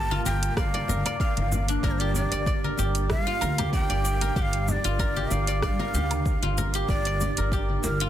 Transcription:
Already playing: upright bass G1, synth texture A#3 A#4, guzheng F4 G4 A#4 D5, ney A5
0.11 guzheng F4, high conga
0.25 upright bass G1, guzheng A#4, ney G5, muted conga, shaker
0.43 closed hi-hat, shaker
0.57 upright bass G1, guzheng D5, ney F5, kick, cross-stick, shaker
0.74 guzheng D5, closed hi-hat, muted conga
0.88 upright bass G1, guzheng A#4, high conga, low conga, shaker
1.05 guzheng D5, closed hi-hat, high conga, low woodblock, shaker
1.20 guzheng F5, ney F5, kick, shaker
1.37 upright bass G1, closed hi-hat, high conga
1.52 muted conga, low conga, shaker
1.68 guzheng D4, closed hi-hat, shaker
1.83 upright bass G1, synth texture D4, guzheng A#4, ney D5, kick, shaker
1.91 ney C5
1.99 guzheng G4, ney D5, closed hi-hat
2.14 guzheng D5, ney D5, low conga, shaker
2.32 upright bass G1, guzheng D5, closed hi-hat, shaker
2.46 guzheng D5, kick, shaker
2.64 guzheng A#4, high conga
2.78 upright bass G1, guzheng G4, muted conga, shaker
2.95 closed hi-hat, shaker
3.10 upright bass G2, ney E5, kick, cross-stick, muted conga, high conga, shaker
3.23 guzheng F4, ney F5
3.41 upright bass D2, guzheng A#4, muted conga, low woodblock, shaker
3.58 guzheng G4, closed hi-hat, high conga, low conga, low woodblock, shaker
3.73 guzheng D5, ney G5, kick, shaker
3.89 upright bass G1, guzheng D5, closed hi-hat
4.05 guzheng D5, shaker
4.21 guzheng A#4, closed hi-hat, muted conga, shaker
4.36 upright bass G1, guzheng G4, ney G5, kick, shaker
4.42 ney F5
4.53 closed hi-hat
4.68 ney D#5, low conga, shaker
4.72 ney D5
4.84 upright bass G1, guzheng F4, closed hi-hat, shaker
4.99 guzheng A#4, kick, shaker
5.16 guzheng G4, high conga
5.31 upright bass G1, guzheng D5, ney F5, muted conga, shaker
5.47 guzheng D5, closed hi-hat, shaker
5.62 upright bass G2, guzheng D5, ney F5, kick, cross-stick, shaker
5.79 guzheng A#4, muted conga
5.94 upright bass D2, guzheng G4, low conga, shaker
6.11 closed hi-hat, high conga, low woodblock, shaker
6.26 kick, shaker
6.42 upright bass G1, guzheng F4, closed hi-hat, high conga
6.58 guzheng A#4, muted conga, low conga, shaker
6.74 guzheng G4, closed hi-hat, shaker
6.89 upright bass G1, ney D5, guzheng D5, kick, shaker
7.05 guzheng D5, closed hi-hat
7.20 guzheng D5, low conga, shaker
7.37 upright bass G1, guzheng A#4, closed hi-hat, shaker
7.52 guzheng G4, kick, shaker
7.69 high conga
7.83 upright bass G1, ney A#4, muted conga, shaker
8.00 guzheng F4, closed hi-hat, shaker

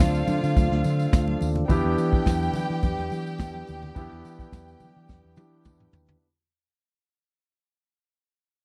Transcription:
Already playing: tonewheel organ D3 A3 D4 F4, grand piano C4 D4 F4 A4, violin section F4 F5
0.00 fingered electric bass D2, kick, snare, tambourine, muted conga, high conga
0.15 closed hi-hat, tambourine
0.28 fingered electric bass D3, open hi-hat, tambourine, high conga, low conga
0.43 fingered electric bass D3, closed hi-hat, tambourine
0.57 fingered electric bass D2, kick, closed hi-hat, tambourine, high conga
0.72 fingered electric bass D2, snare, closed hi-hat
0.84 fingered electric bass D3, closed hi-hat, tambourine, muted conga, high conga
1.00 closed hi-hat, tambourine
1.13 fingered electric bass D2, kick, snare, tambourine, muted conga
1.27 closed hi-hat, high conga
1.41 fingered electric bass D#2, open hi-hat, tambourine, muted conga
1.56 closed hi-hat, low conga
1.68 fingered electric bass E2, tonewheel organ E3 B3 G4, grand piano B3 D4 E4 G4, violin section G4 G5, kick, closed hi-hat, tambourine, muted conga, low conga
1.85 fingered electric bass E2, closed hi-hat
1.98 fingered electric bass E3, closed hi-hat, tambourine, muted conga
2.13 kick, closed hi-hat
2.26 fingered electric bass E2, kick, snare, tambourine, muted conga, high conga
2.42 closed hi-hat, tambourine
2.54 fingered electric bass E3, open hi-hat, tambourine, muted conga, high conga, low conga
2.70 fingered electric bass E3, closed hi-hat
2.83 fingered electric bass E2, kick, closed hi-hat, tambourine, muted conga, high conga
2.98 fingered electric bass E2, snare, closed hi-hat
3.10 fingered electric bass E3, closed hi-hat, tambourine, muted conga, high conga
3.26 closed hi-hat, tambourine
3.39 fingered electric bass E2, kick, snare, tambourine, muted conga
3.53 closed hi-hat, high conga
3.67 fingered electric bass D#2, open hi-hat, tambourine, muted conga
3.83 closed hi-hat, low conga
3.95 fingered electric bass E2, grand piano B3 D4 E4 G4, kick, closed hi-hat, tambourine, muted conga, low conga
4.11 fingered electric bass E2, closed hi-hat
4.24 fingered electric bass E3, closed hi-hat, tambourine
4.39 kick, closed hi-hat, tambourine
4.52 fingered electric bass E2, kick, snare, tambourine, high conga
4.68 closed hi-hat, tambourine
4.80 fingered electric bass E3, open hi-hat, tambourine, muted conga, high conga, low conga
4.96 fingered electric bass E3, closed hi-hat
5.09 fingered electric bass E2, kick, snare, tambourine, muted conga, high conga
5.25 fingered electric bass E2
5.36 fingered electric bass E3, grand piano B3 D4 E4 G4, high tom, tambourine, muted conga, high conga
5.65 fingered electric bass E2, kick, mid tom, tambourine, muted conga
5.80 mid tom, high conga
5.93 fingered electric bass D#2, floor tom, tambourine
6.08 floor tom, low conga

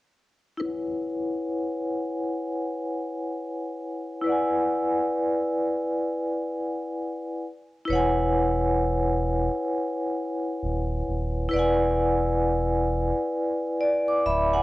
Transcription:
0.57 vibraphone E4 B4
0.62 vibraphone C#5 F#5
0.68 vibraphone G#5
4.21 vibraphone E4 B4
4.27 vibraphone D5 F#5
4.32 vibraphone G#5
7.85 sub bass E1, vibraphone E4 B4
7.90 vibraphone C#5 F#5
7.95 vibraphone G#5
10.63 sub bass D#1
11.08 sub bass D#1
11.49 vibraphone E4 B4
11.53 sub bass E1, vibraphone D5 F#5
11.59 vibraphone G#5
13.81 vibraphone D5
14.08 vibraphone D6
14.26 sub bass D1, vibraphone E5 B5
14.53 vibraphone F#5 G#5

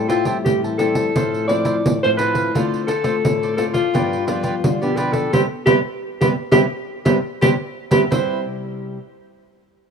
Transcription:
Already playing: nylon-string guitar A2
0.09 alto saxophone F4, cavaquinho G4 C5 E5 A5, pandeiro
0.25 nylon-string guitar G3 C4 E4, cavaquinho G4 C5 E5 A5, pandeiro
0.45 nylon-string guitar A2 E3, alto saxophone G4, pandeiro
0.64 cavaquinho C5 E5 A5, pandeiro
0.78 nylon-string guitar G3 C4 E4, cavaquinho G4 C5 E5 A5, alto saxophone A4, pandeiro
0.95 cavaquinho C5 E5 A5, pandeiro
1.16 nylon-string guitar A2 F3 C4 E4, cavaquinho A4 C5 F5, pandeiro
1.34 pandeiro
1.48 nylon-string guitar F3 C4 E4, cavaquinho E4 A4 C5 F5, alto saxophone D5, pandeiro
1.65 cavaquinho E4 A4 C5 F5, pandeiro
1.85 nylon-string guitar A2 A3, pandeiro
2.03 nylon-string guitar A2 F3 C4 E4, cavaquinho A4 C5 F5, alto saxophone C5, pandeiro
2.18 cavaquinho E4 A4 C5 F5, alto saxophone B4, pandeiro
2.34 cavaquinho A4 C5 F5, pandeiro
2.55 nylon-string guitar D3 A3 C4 F4, cavaquinho F4 A4 C5 D5, pandeiro
2.74 pandeiro
2.87 cavaquinho F4 A4 C5 D5, alto saxophone A4, pandeiro
3.04 nylon-string guitar A3 C4 F4, cavaquinho F4 A4 C5 D5, pandeiro
3.25 nylon-string guitar A2 D3, pandeiro
3.43 cavaquinho A4 C5 D5, pandeiro
3.57 nylon-string guitar A3 C4 F4, cavaquinho F4 A4 C5 D5, alto saxophone A4, pandeiro
3.73 alto saxophone F4, cavaquinho A4 C5 D5, pandeiro
3.94 nylon-string guitar G2 F3 B3 D4, cavaquinho F4 G4 B4 D5, pandeiro
4.13 pandeiro
4.27 nylon-string guitar F3 B3 D4, alto saxophone F4, cavaquinho F4 G4 B4 D5, pandeiro
4.43 cavaquinho F4 G4 B4 D5, pandeiro
4.64 nylon-string guitar D3 G3, pandeiro
4.82 nylon-string guitar B2 F3 B3 D4, alto saxophone G4, cavaquinho G4 B4 D5, pandeiro
4.96 cavaquinho F4 G4 B4 D5, alto saxophone B4, pandeiro
5.13 cavaquinho G4 B4 D5, alto saxophone A4, pandeiro
5.33 nylon-string guitar C3 G3 B3 C4, alto saxophone G4, cavaquinho B4 C5 E5, pandeiro
5.66 nylon-string guitar C3 G3 B3 C4, alto saxophone G4, cavaquinho B4 C5 E5, pandeiro
6.21 nylon-string guitar C3 G3 B3 C4, alto saxophone G4, cavaquinho B4 C5 E5, pandeiro
6.51 nylon-string guitar C3 G3 B3 C4, alto saxophone G4, cavaquinho B4 C5 E5, pandeiro
7.05 nylon-string guitar C3 G3 B3 C4, alto saxophone G4, cavaquinho B4 C5 E5, pandeiro
7.41 nylon-string guitar C3 G3 B3 C4, alto saxophone G4, cavaquinho B4 C5 E5, pandeiro
7.91 nylon-string guitar C3 G3 B3 C4, alto saxophone G4, cavaquinho B4 C5 E5, pandeiro
8.11 nylon-string guitar C3 G3 E4, cavaquinho E4 B4 C5 E5, alto saxophone C5, pandeiro

